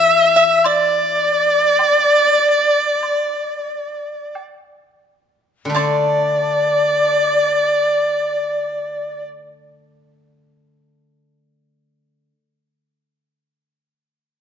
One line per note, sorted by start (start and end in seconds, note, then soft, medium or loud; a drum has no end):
0.00 1.79 E3 medium
0.00 0.35 E5 medium
0.00 0.67 E5 loud
0.00 0.69 E5 loud
0.36 0.63 E5 medium
0.64 2.46 D5 medium
0.64 4.36 D5 loud
0.64 4.37 D5 loud
0.64 high woodblock medium
1.79 high woodblock soft
1.79 low woodblock medium
2.46 2.77 C#5 medium
2.77 3.08 C5 medium
3.03 high woodblock medium
3.08 4.32 B4 medium
4.35 low woodblock soft
5.65 12.28 D3 medium
5.70 11.35 A3 medium
5.75 10.51 D4 medium
5.75 9.21 D5 medium
5.75 9.23 D5 loud
5.75 9.24 D5 loud
5.75 high woodblock medium